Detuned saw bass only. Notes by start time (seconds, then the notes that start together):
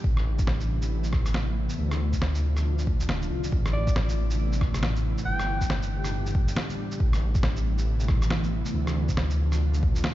0.04 A1
1.78 D2
2.35 D2
3.09 D1
3.31 C2
3.52 A1
5.26 G1
5.83 G1
7.00 A1
8.74 D2
9.31 D2